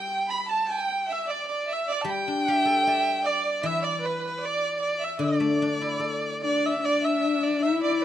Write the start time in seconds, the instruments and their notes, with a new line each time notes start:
Already playing: guzheng G3, fiddle G5, erhu G5
0.28 fiddle B5, erhu B5
0.47 fiddle A5, erhu A5
0.68 fiddle G5, erhu G5
1.08 fiddle E5
1.12 erhu E5
1.27 fiddle D5, erhu D5
1.47 fiddle D5
1.52 erhu D5
1.67 fiddle E5
1.73 erhu E5
1.87 fiddle D5
1.92 erhu D5
2.02 guzheng G3, erhu A5
2.06 fiddle G5
2.10 erhu G5
2.28 guzheng D4
2.48 guzheng G4
2.56 fiddle E5
2.65 guzheng A4
2.85 guzheng D5, fiddle E5
3.24 fiddle D5, erhu D5
3.63 guzheng E3, fiddle E5, erhu E5
3.81 fiddle D5, erhu D5
4.00 fiddle B4
4.06 erhu B4
4.18 fiddle B4
4.27 erhu B4
4.40 fiddle D5
4.45 erhu D5
4.77 fiddle D5
4.82 erhu D5
4.99 fiddle E5
5.04 erhu E5
5.18 guzheng D3, fiddle D5
5.23 erhu D5
5.27 fiddle D5
5.32 fiddle D5
5.40 guzheng A3, fiddle D5
5.49 fiddle D5
5.55 fiddle D5
5.62 guzheng D4, fiddle D5
5.70 fiddle D5
5.79 guzheng E4, fiddle D5
5.87 fiddle D5
5.95 fiddle D5
6.00 guzheng A4, fiddle D5
6.11 fiddle D5
6.19 fiddle D5
6.27 fiddle D5
6.40 horsehead fiddle D4, fiddle D5, erhu D5
6.66 erhu E5
6.80 horsehead fiddle D4, fiddle D5
6.85 erhu D5
7.02 fiddle E5, erhu E5
7.43 erhu D5
7.60 horsehead fiddle E4, fiddle E5, erhu E5
7.82 fiddle D5, erhu D5
7.98 fiddle D5